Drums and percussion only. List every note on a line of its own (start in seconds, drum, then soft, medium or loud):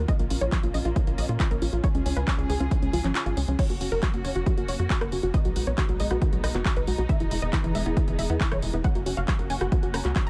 0.08 kick loud
0.08 closed hi-hat medium
0.19 closed hi-hat soft
0.30 open hi-hat loud
0.41 closed hi-hat soft
0.52 kick loud
0.52 clap loud
0.52 closed hi-hat medium
0.63 closed hi-hat soft
0.74 open hi-hat loud
0.85 closed hi-hat soft
0.96 kick loud
0.96 closed hi-hat medium
1.07 closed hi-hat soft
1.18 open hi-hat loud
1.29 closed hi-hat soft
1.40 kick loud
1.40 clap loud
1.40 closed hi-hat medium
1.51 closed hi-hat soft
1.62 open hi-hat medium
1.73 closed hi-hat soft
1.84 kick loud
1.84 closed hi-hat medium
1.95 closed hi-hat soft
2.06 open hi-hat loud
2.17 closed hi-hat soft
2.27 kick loud
2.27 clap loud
2.27 closed hi-hat medium
2.39 closed hi-hat soft
2.50 open hi-hat loud
2.61 closed hi-hat soft
2.71 kick loud
2.71 closed hi-hat medium
2.82 closed hi-hat soft
2.93 open hi-hat loud
3.04 clap soft
3.04 closed hi-hat soft
3.15 clap loud
3.15 closed hi-hat medium
3.26 closed hi-hat soft
3.37 open hi-hat loud
3.48 closed hi-hat soft
3.59 kick loud
3.59 closed hi-hat medium
3.59 crash medium
3.70 closed hi-hat soft
3.81 open hi-hat loud
3.92 closed hi-hat soft
4.03 kick loud
4.03 clap loud
4.03 closed hi-hat medium
4.14 closed hi-hat soft
4.25 open hi-hat loud
4.36 closed hi-hat soft
4.46 kick loud
4.46 closed hi-hat medium
4.58 closed hi-hat soft
4.68 open hi-hat loud
4.79 closed hi-hat soft
4.90 kick loud
4.90 clap loud
4.90 closed hi-hat medium
5.01 cross-stick medium
5.01 closed hi-hat soft
5.12 open hi-hat loud
5.23 closed hi-hat soft
5.34 kick loud
5.34 closed hi-hat medium
5.45 closed hi-hat soft
5.56 open hi-hat loud
5.67 closed hi-hat soft
5.78 kick loud
5.78 clap loud
5.78 closed hi-hat medium
5.89 closed hi-hat soft
6.00 open hi-hat loud
6.11 cross-stick medium
6.11 closed hi-hat soft
6.22 kick loud
6.22 closed hi-hat medium
6.33 closed hi-hat soft
6.44 cross-stick medium
6.44 open hi-hat loud
6.55 clap soft
6.55 closed hi-hat soft
6.65 kick loud
6.65 clap loud
6.65 closed hi-hat medium
6.76 closed hi-hat soft
6.87 open hi-hat loud
6.98 closed hi-hat soft
7.09 kick loud
7.09 closed hi-hat medium
7.20 closed hi-hat soft
7.31 open hi-hat loud
7.42 closed hi-hat soft
7.53 kick loud
7.53 clap loud
7.53 closed hi-hat medium
7.64 closed hi-hat soft
7.75 open hi-hat loud
7.86 closed hi-hat soft
7.97 kick loud
7.97 closed hi-hat medium
8.08 closed hi-hat soft
8.19 open hi-hat loud
8.30 closed hi-hat soft
8.41 kick loud
8.41 clap loud
8.41 closed hi-hat medium
8.52 cross-stick medium
8.52 closed hi-hat soft
8.62 open hi-hat loud
8.73 closed hi-hat soft
8.84 kick loud
8.84 closed hi-hat medium
8.95 closed hi-hat soft
9.06 open hi-hat loud
9.17 closed hi-hat soft
9.28 kick loud
9.28 clap loud
9.28 closed hi-hat medium
9.39 closed hi-hat soft
9.50 open hi-hat loud
9.61 cross-stick medium
9.61 closed hi-hat soft
9.72 kick loud
9.72 closed hi-hat medium
9.83 closed hi-hat soft
9.94 cross-stick medium
9.94 open hi-hat loud
10.05 clap soft
10.05 closed hi-hat soft
10.16 kick loud
10.16 clap loud
10.16 closed hi-hat medium
10.27 closed hi-hat soft